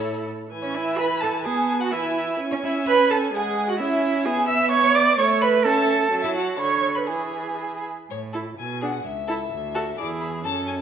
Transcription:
Already playing: A2 E4 A4
0.51 E3 G#5
0.62 C#4 C#5
0.75 E4 E5
0.97 B4 G#5 B5
1.20 A4 A5
1.45 B3 G#4 G#5 A5
1.80 F#4 F#5
1.92 E3 E4 E5 G#5
2.40 C#4 G#5
2.51 C#4 C#5
2.63 E4 E5
2.87 B4 B5
3.10 A4 A5
3.33 G#3 G#4 F#5 G#5
3.69 F#4 F#5
3.79 C#4 E4 E5
3.83 E5
4.25 B3 G#4 E5 G#5
4.48 E5 E6
4.71 C#5 C#6
4.95 D5 D6
5.18 A3 C#5 E5 C#6
5.41 B4 B5
5.64 C#4 A4 E5 A5
6.11 F#3 A5
6.22 E4 E5
6.35 F#4 F#5
6.59 D3 C#5 B5 C#6
6.95 B4 B5
7.07 E3 G#4 G#5 B5
8.10 A2 C#5
8.33 E4 A4 A5
8.57 B2 G#5
8.81 D4 G#4 F#5
9.05 C#2 E5
9.28 E4 A4
9.51 D2
9.75 F#4 A4
9.98 E2 E4 G#4 D5
10.21 B5
10.43 F#2 C#4 A4 A5
10.67 G#5

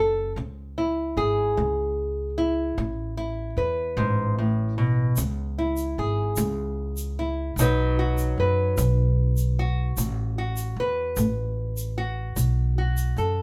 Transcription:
Already playing: F#1 A4
0.36 C#2 C#3
0.78 E4
1.17 G#1 G#4
1.57 C#2 G#3
2.38 E4
2.78 A1 A2
3.17 E4
3.57 E2 B4
3.97 A1 G#2
4.39 A2
4.78 B2
5.16 C#2 C#3, shaker
5.58 E4
5.77 shaker
5.98 G#1 G#4
6.36 C#2 G#3, shaker
6.97 shaker
7.19 E4
7.56 B1 B2 F#3 D#4, shaker
7.61 F#4 B4
7.99 F#4
8.18 shaker
8.38 F#2 B4
8.78 B1 F#3, shaker
9.37 shaker
9.59 F#4
9.97 A1 A2, shaker
10.38 F#4
10.57 shaker
10.76 E2 B4
11.17 A1 A3, shaker
11.77 shaker
11.98 F#4
12.36 B1 B2, shaker
12.78 F#4
12.97 shaker
13.17 F#2 A4, shaker

